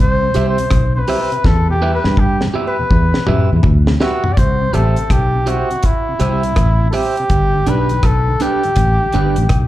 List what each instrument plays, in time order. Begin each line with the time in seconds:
0.00 fingered electric bass C2, flugelhorn C5
0.22 tonewheel organ C3
0.34 fingered electric bass C2, tonewheel organ G3 C4 E4, clean electric guitar G4 C5 E5, closed hi-hat
0.49 flugelhorn C5
0.58 tonewheel organ C3, closed hi-hat
0.71 fingered electric bass B1, kick, cross-stick, closed hi-hat
0.95 tonewheel organ C3, flugelhorn B4 C5
1.08 tonewheel organ G3 C4 E4, clean electric guitar G4 C5 E5, open hi-hat
1.32 tonewheel organ C3, closed hi-hat
1.44 fingered electric bass E2, flugelhorn A4, kick, snare
1.69 tonewheel organ E2 B2, flugelhorn G4
1.81 tonewheel organ G3 B3 E4, clean electric guitar G4 B4 E5
1.94 flugelhorn B4
2.04 tonewheel organ E2 B2, fingered electric bass G2, snare
2.17 flugelhorn G4, kick
2.41 tonewheel organ E2 B2, snare
2.54 tonewheel organ G3 B3 E4, clean electric guitar G4 B4 E5
2.67 flugelhorn B4
2.79 tonewheel organ E2 B2
2.91 fingered electric bass E2, kick
3.14 tonewheel organ E2 B2, snare
3.27 fingered electric bass F#2, tonewheel organ G3 B3 E4, clean electric guitar G4 B4 E5, mid tom
3.52 tonewheel organ E2 B2, fingered electric bass E2
3.63 fingered electric bass D2, kick, floor tom
3.87 tonewheel organ E2 B2, snare
4.00 tonewheel organ G3 B3 E4, flugelhorn F#4, clean electric guitar G4 B4 E5, snare
4.24 tonewheel organ E2 B2, floor tom
4.33 flugelhorn D5
4.37 fingered electric bass C2, flugelhorn C5, kick, closed hi-hat
4.62 tonewheel organ C3
4.73 fingered electric bass A1, tonewheel organ G3 C4 E4, clean electric guitar G4 C5 E5, flugelhorn A4, closed hi-hat
4.96 tonewheel organ C3, closed hi-hat
5.10 fingered electric bass B1, flugelhorn G4, kick, cross-stick, closed hi-hat
5.35 tonewheel organ C3
5.46 tonewheel organ G3 C4 E4, flugelhorn F#4, clean electric guitar G4 C5 E5, closed hi-hat
5.71 tonewheel organ C3, closed hi-hat
5.83 flugelhorn E4, kick, closed hi-hat
6.09 tonewheel organ C3
6.20 fingered electric bass C2, tonewheel organ G3 C4 E4, clean electric guitar G4 C5 E5, closed hi-hat
6.43 tonewheel organ C3, closed hi-hat
6.56 fingered electric bass A1, kick, cross-stick, closed hi-hat
6.81 tonewheel organ C3
6.91 tonewheel organ G3 C4, clean electric guitar G4 C5 E5, flugelhorn A4, open hi-hat
6.95 tonewheel organ E4, flugelhorn G4
7.17 tonewheel organ C3, closed hi-hat
7.30 fingered electric bass G1, kick, closed hi-hat
7.55 tonewheel organ G2 D3
7.67 fingered electric bass B1, tonewheel organ G3 B3 D4, clean electric guitar D4 G4 B4, flugelhorn B4, closed hi-hat
7.89 tonewheel organ G2 D3, closed hi-hat
8.03 fingered electric bass B1, flugelhorn A4, kick, cross-stick, closed hi-hat
8.28 tonewheel organ G2 D3
8.40 tonewheel organ G3 B3 D4, clean electric guitar D4 G4 B4, flugelhorn G4, closed hi-hat
8.63 tonewheel organ G2 D3, closed hi-hat
8.76 fingered electric bass A1, kick, closed hi-hat
9.00 tonewheel organ G2 D3
9.12 fingered electric bass G1, tonewheel organ G3 B3 D4, clean electric guitar D4 G4 B4, closed hi-hat
9.36 fingered electric bass A1, tonewheel organ G2 D3, closed hi-hat
9.49 fingered electric bass B1, kick, cross-stick, closed hi-hat